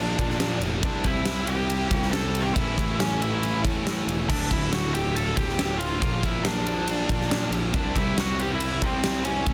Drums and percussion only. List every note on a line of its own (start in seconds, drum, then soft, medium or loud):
0.19 kick medium
0.19 ride medium
0.30 snare soft
0.40 snare loud
0.40 ride loud
0.61 ride medium
0.83 kick loud
0.83 ride loud
1.04 kick medium
1.04 ride medium
1.25 snare loud
1.25 ride loud
1.47 ride medium
1.70 ride loud
1.91 kick loud
1.91 ride medium
2.02 snare soft
2.13 snare loud
2.13 ride loud
2.35 ride medium
2.56 kick loud
2.56 ride loud
2.78 kick medium
2.78 ride medium
3.00 snare loud
3.00 ride loud
3.22 ride medium
3.43 ride loud
3.65 kick medium
3.65 ride medium
3.87 snare loud
3.87 ride loud
4.09 ride medium
4.30 kick loud
4.30 crash loud
4.51 kick medium
4.51 ride medium
4.73 snare loud
4.73 ride loud
4.95 ride medium
5.16 ride loud
5.37 kick medium
5.37 ride medium
5.49 snare soft
5.59 snare loud
5.59 ride loud
5.81 ride medium
6.02 kick loud
6.02 ride loud
6.23 kick medium
6.23 ride medium
6.45 snare loud
6.45 ride loud
6.67 ride medium
6.88 ride loud
7.09 kick medium
7.09 ride medium
7.21 snare soft
7.31 snare loud
7.31 ride loud
7.52 ride medium
7.74 kick loud
7.74 ride loud
7.96 kick medium
7.96 ride medium
8.18 snare loud
8.18 ride loud
8.39 ride medium
8.60 ride loud
8.82 kick medium
8.82 ride medium
9.04 snare loud
9.04 ride loud
9.25 ride medium
9.46 kick loud
9.46 ride loud